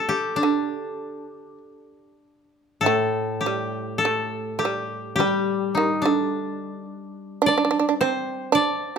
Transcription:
0, 0, Header, 1, 4, 480
1, 0, Start_track
1, 0, Tempo, 1167315
1, 180, Time_signature, 2, 2, 24, 8
1, 667, Tempo, 1207243
1, 1627, Tempo, 1162791
1, 2107, Tempo, 1111111
1, 3742, End_track
2, 0, Start_track
2, 0, Title_t, "Koto"
2, 0, Program_c, 0, 107
2, 0, Note_on_c, 0, 69, 64
2, 36, Note_on_c, 0, 67, 74
2, 149, Note_on_c, 0, 62, 67
2, 762, Note_off_c, 0, 69, 0
2, 868, Note_off_c, 0, 67, 0
2, 1130, Note_off_c, 0, 62, 0
2, 1139, Note_on_c, 0, 69, 83
2, 1376, Note_on_c, 0, 67, 69
2, 1604, Note_off_c, 0, 69, 0
2, 1605, Note_on_c, 0, 69, 71
2, 1853, Note_off_c, 0, 67, 0
2, 1855, Note_on_c, 0, 67, 70
2, 2087, Note_off_c, 0, 67, 0
2, 2089, Note_on_c, 0, 67, 78
2, 2343, Note_on_c, 0, 63, 59
2, 2403, Note_off_c, 0, 69, 0
2, 2460, Note_on_c, 0, 62, 57
2, 2486, Note_off_c, 0, 63, 0
2, 2970, Note_off_c, 0, 67, 0
2, 3085, Note_on_c, 0, 74, 88
2, 3320, Note_on_c, 0, 72, 82
2, 3508, Note_off_c, 0, 62, 0
2, 3552, Note_off_c, 0, 74, 0
2, 3554, Note_on_c, 0, 74, 81
2, 3742, Note_off_c, 0, 72, 0
2, 3742, Note_off_c, 0, 74, 0
2, 3742, End_track
3, 0, Start_track
3, 0, Title_t, "Shamisen"
3, 0, Program_c, 1, 106
3, 0, Note_on_c, 1, 57, 76
3, 164, Note_off_c, 1, 57, 0
3, 177, Note_on_c, 1, 50, 59
3, 648, Note_off_c, 1, 50, 0
3, 1160, Note_on_c, 1, 57, 69
3, 1377, Note_off_c, 1, 57, 0
3, 1399, Note_on_c, 1, 55, 59
3, 1616, Note_off_c, 1, 55, 0
3, 1633, Note_on_c, 1, 57, 63
3, 1830, Note_off_c, 1, 57, 0
3, 1855, Note_on_c, 1, 57, 48
3, 1877, Note_off_c, 1, 57, 0
3, 1880, Note_on_c, 1, 55, 60
3, 2095, Note_off_c, 1, 55, 0
3, 2107, Note_on_c, 1, 55, 66
3, 2333, Note_off_c, 1, 55, 0
3, 2356, Note_on_c, 1, 51, 58
3, 2466, Note_off_c, 1, 51, 0
3, 2477, Note_on_c, 1, 50, 57
3, 2819, Note_off_c, 1, 50, 0
3, 3065, Note_on_c, 1, 62, 76
3, 3088, Note_off_c, 1, 62, 0
3, 3094, Note_on_c, 1, 62, 55
3, 3124, Note_off_c, 1, 62, 0
3, 3134, Note_on_c, 1, 62, 65
3, 3159, Note_off_c, 1, 62, 0
3, 3164, Note_on_c, 1, 62, 55
3, 3185, Note_off_c, 1, 62, 0
3, 3190, Note_on_c, 1, 62, 64
3, 3217, Note_off_c, 1, 62, 0
3, 3228, Note_on_c, 1, 62, 56
3, 3252, Note_off_c, 1, 62, 0
3, 3268, Note_on_c, 1, 62, 64
3, 3287, Note_off_c, 1, 62, 0
3, 3322, Note_on_c, 1, 60, 72
3, 3536, Note_off_c, 1, 60, 0
3, 3542, Note_on_c, 1, 62, 74
3, 3731, Note_off_c, 1, 62, 0
3, 3742, End_track
4, 0, Start_track
4, 0, Title_t, "Koto"
4, 0, Program_c, 2, 107
4, 1145, Note_on_c, 2, 45, 43
4, 2102, Note_on_c, 2, 55, 50
4, 2541, Note_off_c, 2, 45, 0
4, 3541, Note_off_c, 2, 55, 0
4, 3742, End_track
0, 0, End_of_file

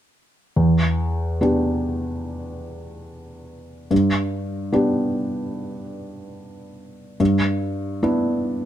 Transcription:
0, 0, Header, 1, 2, 480
1, 0, Start_track
1, 0, Key_signature, 1, "minor"
1, 0, Tempo, 842697
1, 323, Time_signature, 4, 2, 24, 8
1, 1759, Tempo, 821918
1, 5009, End_track
2, 0, Start_track
2, 0, Title_t, "Felt piano"
2, 0, Program_c, 0, 0
2, 321, Note_on_c, 0, 40, 27
2, 434, Control_c, 0, 64, 127
2, 790, Note_off_c, 0, 40, 0
2, 802, Note_on_c, 0, 59, 20
2, 806, Note_on_c, 0, 62, 20
2, 811, Note_on_c, 0, 67, 22
2, 2216, Note_off_c, 0, 59, 0
2, 2218, Note_off_c, 0, 62, 0
2, 2220, Note_off_c, 0, 67, 0
2, 2237, Note_on_c, 0, 43, 28
2, 2250, Control_c, 0, 64, 0
2, 2342, Control_c, 0, 64, 127
2, 2703, Note_off_c, 0, 43, 0
2, 2715, Note_on_c, 0, 59, 22
2, 2719, Note_on_c, 0, 62, 23
2, 2721, Note_on_c, 0, 67, 24
2, 4136, Note_off_c, 0, 59, 0
2, 4138, Note_off_c, 0, 62, 0
2, 4139, Note_off_c, 0, 67, 0
2, 4160, Note_on_c, 0, 43, 34
2, 4171, Control_c, 0, 64, 0
2, 4257, Control_c, 0, 64, 127
2, 4623, Note_off_c, 0, 43, 0
2, 4643, Note_on_c, 0, 62, 27
2, 4644, Note_on_c, 0, 59, 27
2, 4646, Note_on_c, 0, 64, 30
2, 5009, Note_off_c, 0, 59, 0
2, 5009, Note_off_c, 0, 62, 0
2, 5009, Note_off_c, 0, 64, 0
2, 5009, End_track
0, 0, End_of_file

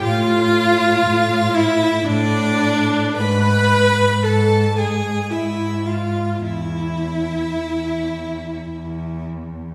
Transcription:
0, 0, Header, 1, 5, 480
1, 0, Start_track
1, 0, Tempo, 1006711
1, 20, Time_signature, 3, 2, 24, 8
1, 980, Tempo, 1115242
1, 1460, Tempo, 1065719
1, 2420, Tempo, 1127820
1, 4311, End_track
2, 0, Start_track
2, 0, Title_t, "Violin"
2, 0, Program_c, 0, 40
2, 23, Note_on_c, 0, 77, 127
2, 740, Note_on_c, 0, 76, 123
2, 747, Note_off_c, 0, 77, 0
2, 982, Note_on_c, 0, 74, 125
2, 989, Note_off_c, 0, 76, 0
2, 1458, Note_off_c, 0, 74, 0
2, 1460, Note_on_c, 0, 83, 124
2, 1943, Note_on_c, 0, 81, 111
2, 1950, Note_off_c, 0, 83, 0
2, 2183, Note_on_c, 0, 80, 105
2, 2190, Note_off_c, 0, 81, 0
2, 2425, Note_on_c, 0, 76, 89
2, 2432, Note_off_c, 0, 80, 0
2, 2660, Note_on_c, 0, 77, 80
2, 2666, Note_off_c, 0, 76, 0
2, 2896, Note_off_c, 0, 77, 0
2, 2901, Note_on_c, 0, 76, 87
2, 4088, Note_off_c, 0, 76, 0
2, 4311, End_track
3, 0, Start_track
3, 0, Title_t, "Viola"
3, 0, Program_c, 1, 41
3, 10, Note_on_c, 1, 65, 127
3, 734, Note_on_c, 1, 64, 115
3, 741, Note_off_c, 1, 65, 0
3, 974, Note_on_c, 1, 62, 107
3, 981, Note_off_c, 1, 64, 0
3, 1454, Note_off_c, 1, 62, 0
3, 1457, Note_on_c, 1, 71, 127
3, 1937, Note_on_c, 1, 69, 99
3, 1944, Note_off_c, 1, 71, 0
3, 2187, Note_on_c, 1, 68, 93
3, 2194, Note_off_c, 1, 69, 0
3, 2420, Note_on_c, 1, 64, 80
3, 2427, Note_off_c, 1, 68, 0
3, 2656, Note_on_c, 1, 65, 79
3, 2662, Note_off_c, 1, 64, 0
3, 2896, Note_on_c, 1, 64, 86
3, 2903, Note_off_c, 1, 65, 0
3, 4103, Note_off_c, 1, 64, 0
3, 4311, End_track
4, 0, Start_track
4, 0, Title_t, "Violin"
4, 0, Program_c, 2, 40
4, 22, Note_on_c, 2, 65, 119
4, 747, Note_on_c, 2, 64, 94
4, 754, Note_off_c, 2, 65, 0
4, 992, Note_on_c, 2, 62, 114
4, 999, Note_off_c, 2, 64, 0
4, 1475, Note_on_c, 2, 71, 113
4, 1482, Note_off_c, 2, 62, 0
4, 1946, Note_off_c, 2, 71, 0
4, 1950, Note_on_c, 2, 69, 101
4, 2181, Note_off_c, 2, 69, 0
4, 2183, Note_on_c, 2, 68, 83
4, 2429, Note_on_c, 2, 64, 82
4, 2435, Note_off_c, 2, 68, 0
4, 2663, Note_on_c, 2, 65, 71
4, 2669, Note_off_c, 2, 64, 0
4, 2902, Note_on_c, 2, 64, 76
4, 2909, Note_off_c, 2, 65, 0
4, 4106, Note_off_c, 2, 64, 0
4, 4311, End_track
5, 0, Start_track
5, 0, Title_t, "Cello"
5, 0, Program_c, 3, 42
5, 22, Note_on_c, 3, 45, 100
5, 447, Note_off_c, 3, 45, 0
5, 505, Note_on_c, 3, 45, 91
5, 924, Note_off_c, 3, 45, 0
5, 982, Note_on_c, 3, 45, 107
5, 1405, Note_off_c, 3, 45, 0
5, 1461, Note_on_c, 3, 44, 93
5, 1882, Note_off_c, 3, 44, 0
5, 1941, Note_on_c, 3, 44, 85
5, 2365, Note_off_c, 3, 44, 0
5, 2425, Note_on_c, 3, 44, 74
5, 2837, Note_off_c, 3, 44, 0
5, 2896, Note_on_c, 3, 40, 71
5, 3323, Note_off_c, 3, 40, 0
5, 3383, Note_on_c, 3, 40, 55
5, 3805, Note_off_c, 3, 40, 0
5, 3861, Note_on_c, 3, 40, 66
5, 4285, Note_off_c, 3, 40, 0
5, 4311, End_track
0, 0, End_of_file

